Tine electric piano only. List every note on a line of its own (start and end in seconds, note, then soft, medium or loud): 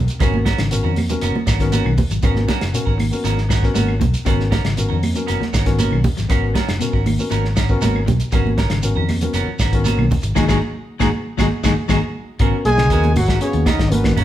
0.21 0.45 B3 medium
0.21 0.45 C#4 medium
0.21 0.46 F#4 medium
0.21 0.46 A#4 medium
0.71 0.89 B3 medium
0.71 0.90 C#4 medium
0.71 0.90 F#4 medium
0.71 0.90 A#4 medium
1.10 1.34 B3 medium
1.10 1.34 C#4 medium
1.10 1.35 F#4 medium
1.10 1.35 A#4 medium
1.60 1.91 B3 medium
1.60 1.91 C#4 medium
1.60 1.91 F#4 medium
1.60 1.92 A#4 loud
2.23 2.48 B3 medium
2.23 2.48 C#4 medium
2.23 2.48 F#4 medium
2.23 2.49 A#4 medium
2.74 2.93 B3 medium
2.74 2.93 C#4 medium
2.74 2.93 F#4 medium
2.74 2.93 A#4 medium
3.11 3.37 B3 medium
3.11 3.37 C#4 medium
3.11 3.37 F#4 medium
3.11 3.37 A#4 medium
3.63 3.94 B3 medium
3.63 3.94 C#4 medium
3.63 3.94 F#4 medium
3.63 3.95 A#4 medium
4.25 4.51 B3 medium
4.25 4.51 C#4 medium
4.25 4.51 F#4 medium
4.25 4.52 A#4 medium
4.77 4.96 B3 medium
4.77 4.96 C#4 medium
4.77 4.96 F#4 medium
4.77 4.97 A#4 medium
5.14 5.40 B3 medium
5.14 5.40 C#4 medium
5.14 5.41 F#4 medium
5.14 5.41 A#4 medium
5.66 5.97 B3 medium
5.66 5.97 C#4 medium
5.66 5.97 F#4 medium
5.66 5.97 A#4 medium
6.29 6.54 B3 medium
6.29 6.54 C#4 medium
6.29 6.55 F#4 medium
6.29 6.55 A#4 medium
6.80 6.99 B3 medium
6.80 7.00 C#4 medium
6.80 7.00 F#4 medium
6.80 7.00 A#4 medium
7.19 7.44 B3 medium
7.19 7.44 C#4 medium
7.19 7.44 F#4 medium
7.19 7.45 A#4 medium
7.70 8.01 B3 medium
7.70 8.01 C#4 medium
7.70 8.01 F#4 medium
7.70 8.01 A#4 loud
8.32 8.58 B3 medium
8.32 8.58 C#4 medium
8.32 8.58 F#4 medium
8.32 8.59 A#4 medium
8.82 9.02 B3 medium
8.82 9.03 C#4 medium
8.82 9.03 F#4 medium
8.82 9.03 A#4 medium
9.21 9.47 B3 medium
9.21 9.47 C#4 medium
9.21 9.48 F#4 medium
9.21 9.48 A#4 medium
9.74 10.04 B3 medium
9.74 10.05 C#4 medium
9.74 10.05 F#4 medium
9.74 10.05 A#4 medium
10.38 10.46 D#4 medium
10.38 10.46 F#4 medium
10.38 10.46 G#4 medium
10.51 10.58 D#4 medium
10.51 10.58 F#4 medium
10.51 10.58 G#4 medium
11.02 11.10 D#4 medium
11.02 11.10 F#4 medium
11.02 11.10 G#4 medium
11.40 11.48 D#4 medium
11.40 11.47 F#4 medium
11.40 11.48 G#4 loud
11.65 11.73 D#4 medium
11.65 11.73 F#4 medium
11.65 11.73 G#4 medium
11.90 11.98 D#4 medium
11.90 11.98 F#4 medium
11.90 11.98 G#4 medium
12.40 12.65 B3 medium
12.40 12.65 C#4 medium
12.40 12.65 F#4 medium
12.40 12.65 A#4 medium
12.91 13.15 B3 medium
12.91 13.16 C#4 medium
12.91 13.16 F#4 medium
12.91 13.16 A#4 medium
13.41 13.66 B3 medium
13.41 13.66 C#4 medium
13.41 13.66 F#4 medium
13.41 13.66 G#4 loud
13.91 14.16 B3 medium
13.91 14.16 C#4 medium
13.91 14.17 F#4 medium
13.91 14.17 A#4 medium